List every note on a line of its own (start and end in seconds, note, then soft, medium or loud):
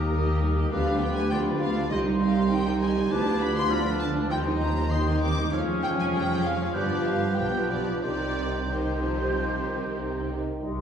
0.00 0.71 D#2 medium
0.00 0.72 D#2 medium
0.00 0.11 A#3 soft
0.00 0.68 A#3 medium
0.00 0.11 G4 soft
0.00 0.69 G4 medium
0.00 2.94 G4 medium
0.00 0.67 A#4 medium
0.00 0.11 D#5 soft
0.00 0.37 A#5 medium
0.00 0.71 D#6 medium
0.11 0.26 G3 soft
0.11 0.25 D#4 medium
0.11 0.25 A#4 soft
0.26 0.41 A#3 soft
0.26 0.41 G4 soft
0.26 0.41 D#5 soft
0.41 0.56 G3 soft
0.41 0.56 D#4 medium
0.41 0.57 A#4 soft
0.55 0.71 A#3 soft
0.55 0.71 G4 soft
0.55 0.72 G4 medium
0.55 0.72 D#5 soft
0.70 1.89 D2 medium
0.70 1.88 D3 medium
0.70 0.85 F3 medium
0.70 0.85 B3 medium
0.70 1.92 B3 medium
0.70 0.85 F4 medium
0.70 1.33 G4 medium
0.70 1.33 B4 medium
0.70 0.85 D5 medium
0.70 0.99 F5 medium
0.70 1.33 D6 medium
0.86 1.01 G3 medium
0.86 1.01 D4 medium
0.86 1.02 G4 soft
0.86 1.02 B4 soft
1.01 1.16 F3 soft
1.01 1.16 B3 soft
1.01 1.17 F4 medium
1.01 1.17 D5 medium
1.01 1.16 G5 medium
1.16 1.31 G3 soft
1.16 1.31 D4 medium
1.16 1.32 G4 soft
1.16 1.32 B4 medium
1.16 1.31 G#5 medium
1.30 1.45 F3 soft
1.30 1.45 B3 medium
1.30 1.94 F4 medium
1.30 1.46 F4 medium
1.30 1.94 D5 medium
1.30 1.46 D5 medium
1.30 1.38 G5 medium
1.30 1.93 B5 medium
1.46 1.61 G3 soft
1.46 1.61 D4 soft
1.46 1.62 G4 soft
1.46 1.62 B4 soft
1.60 1.76 F3 medium
1.60 1.76 B3 soft
1.60 1.76 F4 medium
1.60 1.76 D5 soft
1.60 1.90 F5 medium
1.76 1.91 G3 soft
1.76 1.91 D4 soft
1.76 1.91 G4 soft
1.76 1.91 B4 soft
1.90 3.11 C2 medium
1.90 3.12 C2 medium
1.90 2.05 D#3 medium
1.90 3.73 G3 medium
1.90 2.05 C4 medium
1.90 2.94 C4 medium
1.90 2.51 D#4 medium
1.90 2.06 G4 soft
1.90 3.11 C5 medium
1.90 1.98 D#5 medium
1.90 2.06 D#5 medium
1.90 2.85 C6 medium
2.06 2.22 G3 medium
2.06 2.21 D#4 medium
2.06 2.22 D#4 soft
2.06 2.23 C5 soft
2.20 2.36 D#3 medium
2.20 2.36 C4 medium
2.20 2.37 G4 soft
2.20 2.37 D#5 soft
2.20 2.51 F5 medium
2.36 2.52 G3 soft
2.36 2.52 D#4 soft
2.36 2.52 C5 soft
2.51 2.65 D#3 medium
2.51 2.66 C4 soft
2.51 3.13 D#4 medium
2.51 2.66 G4 medium
2.51 2.66 D#5 medium
2.51 2.82 G5 medium
2.65 2.81 G3 soft
2.65 2.81 D#4 medium
2.65 2.82 D#4 medium
2.65 2.82 C5 medium
2.80 2.96 D#3 medium
2.80 2.96 C4 medium
2.80 2.97 G4 medium
2.80 2.97 D#5 medium
2.80 3.11 G#5 medium
2.94 3.10 G3 medium
2.94 3.10 D#4 medium
2.98 3.12 D#4 medium
2.98 3.12 C5 medium
3.10 4.29 D2 medium
3.10 3.24 D3 medium
3.10 3.25 B3 medium
3.10 4.29 B3 medium
3.10 3.26 D4 medium
3.10 3.72 E4 medium
3.10 4.29 F4 medium
3.10 3.72 B4 medium
3.10 3.26 D5 medium
3.10 3.41 A5 medium
3.10 3.72 D6 medium
3.25 3.41 F3 soft
3.25 3.41 D4 medium
3.25 3.42 F4 medium
3.25 3.42 B4 soft
3.40 3.56 D3 soft
3.40 3.55 B3 soft
3.40 3.57 D4 medium
3.40 3.57 D5 medium
3.40 3.56 B5 loud
3.54 3.70 F3 medium
3.54 3.70 D4 medium
3.54 3.72 F4 soft
3.54 3.72 B4 medium
3.54 3.71 C6 medium
3.70 3.84 D3 soft
3.70 4.94 F3 medium
3.70 3.84 B3 medium
3.70 4.32 D4 medium
3.70 3.86 D4 medium
3.70 4.33 D5 medium
3.70 3.86 D5 medium
3.70 4.00 B5 medium
3.70 4.32 F6 medium
3.84 4.00 F3 soft
3.84 4.00 D4 soft
3.88 4.02 F4 soft
3.88 4.02 B4 medium
4.00 4.16 D3 medium
4.00 4.16 B3 soft
4.00 4.17 D4 medium
4.00 4.17 D5 medium
4.00 4.08 A5 medium
4.15 4.31 F3 medium
4.15 4.31 D4 medium
4.15 4.32 F4 soft
4.15 4.32 B4 medium
4.30 5.53 D#2 medium
4.30 4.45 D#3 medium
4.30 4.45 C4 medium
4.30 5.53 C4 medium
4.30 5.53 D#4 medium
4.30 4.76 D#4 medium
4.30 4.47 G4 medium
4.30 4.76 C5 medium
4.30 4.47 C5 medium
4.30 4.39 G5 medium
4.30 4.92 C6 medium
4.47 4.62 G3 medium
4.47 4.62 D#4 medium
4.47 4.63 D#4 medium
4.47 4.63 D#5 medium
4.61 4.77 D#3 medium
4.61 4.77 C4 medium
4.61 4.79 G4 soft
4.61 4.79 C5 medium
4.61 4.92 A#5 medium
4.76 4.92 G3 medium
4.76 4.92 D#4 soft
4.80 4.94 D#4 soft
4.80 4.94 D#5 soft
4.91 5.06 D#3 medium
4.91 5.36 D#3 medium
4.91 5.06 C4 medium
4.91 5.52 D#4 medium
4.91 5.08 G4 medium
4.91 5.52 C5 medium
4.91 5.07 C5 medium
4.91 5.22 C6 medium
4.91 5.51 D#6 medium
5.07 5.23 G3 soft
5.07 5.22 D#4 soft
5.07 5.24 D#4 medium
5.07 5.24 D#5 soft
5.21 5.38 D#3 medium
5.21 5.37 C4 medium
5.21 5.39 G4 soft
5.21 5.39 C5 medium
5.21 5.52 D6 medium
5.38 5.53 G3 soft
5.38 5.53 D#4 soft
5.38 5.53 D#5 soft
5.51 6.71 F1 medium
5.51 6.71 F2 medium
5.51 6.71 F3 medium
5.51 6.10 G#3 medium
5.51 6.72 C#4 medium
5.51 6.71 C#4 medium
5.51 8.03 F4 medium
5.51 6.71 G#4 medium
5.51 6.72 G#4 medium
5.51 6.76 C#5 medium
5.51 5.60 F5 medium
5.51 6.76 F6 medium
5.83 5.89 G5 medium
5.99 6.05 G#5 medium
6.13 6.75 G3 medium
6.13 6.44 G5 medium
6.44 6.75 F5 medium
6.73 7.38 G1 medium
6.73 7.38 G2 medium
6.73 7.36 F3 medium
6.73 7.37 F3 medium
6.73 7.36 B3 medium
6.73 8.03 B3 medium
6.73 7.37 D4 medium
6.73 7.36 G4 medium
6.73 7.37 G4 medium
6.73 7.38 B4 medium
6.73 7.06 D5 medium
6.73 7.38 G6 medium
7.06 7.38 F5 medium
7.36 8.03 B1 medium
7.36 8.03 B2 medium
7.36 8.02 F3 medium
7.36 8.04 F3 medium
7.36 8.02 B3 medium
7.36 8.02 D4 soft
7.36 8.01 G4 medium
7.36 8.02 G4 medium
7.36 8.03 B4 soft
7.36 7.70 G5 medium
7.36 8.02 G6 soft
7.70 8.01 D5 medium
8.02 10.39 C2 medium
8.02 10.39 C3 medium
8.02 8.68 D#3 soft
8.02 8.67 D#3 soft
8.02 10.27 C4 soft
8.02 8.66 C4 soft
8.02 10.31 D#4 medium
8.02 8.68 D#4 soft
8.02 8.67 G4 soft
8.02 8.67 G4 medium
8.02 8.68 C5 medium
8.02 8.67 D5 medium
8.02 8.67 G6 soft
8.67 10.39 D#3 medium
8.67 9.03 D#3 medium
8.67 10.39 C4 medium
8.67 10.40 D#4 medium
8.67 10.39 G4 medium
8.67 10.28 G4 soft
8.67 10.28 C5 medium
8.67 10.31 C5 medium
8.67 10.28 G6 medium
9.02 9.21 F3 medium
9.19 9.36 G3 medium
9.35 9.69 F3 medium
9.67 10.01 D#3 soft
9.99 10.34 C3 medium
10.32 10.64 D#3 soft
10.62 10.81 C2 medium
10.62 10.81 C3 medium
10.62 10.81 G3 soft
10.62 10.81 D#4 medium
10.62 10.81 G4 soft
10.62 10.81 D#5 medium
10.62 10.81 C6 medium